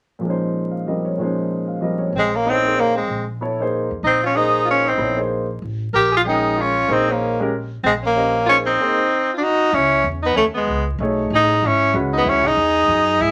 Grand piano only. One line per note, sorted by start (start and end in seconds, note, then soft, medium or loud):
0.19 1.16 A#2 soft
0.19 0.85 F3 soft
0.24 1.18 G#3 soft
0.24 1.20 C#4 soft
0.28 1.20 D#4 soft
0.28 1.22 C5 medium
0.71 0.93 F5 soft
0.86 1.17 F3 soft
0.86 1.19 G3 soft
0.86 1.20 C4 soft
0.86 1.20 A#4 soft
0.86 1.11 D#5 soft
1.05 1.26 C#5 soft
1.18 2.13 A#2 soft
1.18 1.79 F3 soft
1.18 2.14 G#3 soft
1.18 2.15 C#4 soft
1.18 2.15 D#4 soft
1.23 2.16 C5 medium
1.68 1.89 F5 soft
1.81 2.13 F3 soft
1.81 2.14 G3 soft
1.81 2.14 C4 soft
1.81 2.15 A#4 soft
1.81 2.06 D#5 soft
1.98 2.20 C#5 soft
2.45 2.63 B3 soft
2.45 2.63 E4 soft
2.45 2.63 A4 medium
2.45 2.63 C#5 medium
2.64 2.92 A#3 medium
2.64 2.93 D#4 soft
2.64 2.93 G#4 soft
2.64 2.93 C5 medium
3.41 3.58 B3 medium
3.41 3.58 E4 soft
3.41 3.59 A4 soft
3.41 3.59 C#5 medium
3.60 3.87 A#3 medium
3.60 3.88 D#4 medium
3.60 3.88 G#4 medium
3.60 3.89 C5 medium
4.35 4.82 A#3 medium
4.35 4.83 D#4 medium
4.35 4.83 G#4 medium
4.35 4.83 C5 medium
4.98 5.16 B3 medium
4.98 5.16 E4 medium
4.98 5.16 A4 soft
4.98 5.17 C#5 medium
5.16 5.45 A#3 soft
5.16 5.45 D#4 soft
5.16 5.46 G#4 soft
5.16 5.46 C5 medium
6.25 6.72 G#3 medium
6.25 6.72 C#4 medium
6.25 6.73 A#4 medium
6.25 6.73 G5 medium
6.87 7.35 A#3 medium
6.87 7.35 D#4 medium
6.87 7.36 G#4 medium
6.87 7.36 C5 medium
7.40 7.51 G#3 medium
7.40 7.51 C#4 medium
7.40 7.51 G4 medium
7.40 7.52 A#4 medium
8.15 8.33 C#4 medium
8.15 8.33 G4 medium
8.15 8.33 C5 medium
8.15 8.33 D#5 medium
8.48 8.64 A#3 medium
8.48 8.65 D#4 soft
8.48 8.65 G#4 soft
8.48 8.65 C5 medium
8.80 8.96 A#3 medium
8.80 8.97 D#4 medium
8.80 8.97 G#4 medium
8.80 8.97 C5 medium
11.00 11.47 A3 medium
11.00 11.47 D#4 medium
11.00 11.47 G#4 medium
11.00 11.48 C#5 medium
11.94 12.41 G#3 medium
11.94 12.41 C#4 medium
11.94 12.41 F#4 medium
11.94 12.42 B4 medium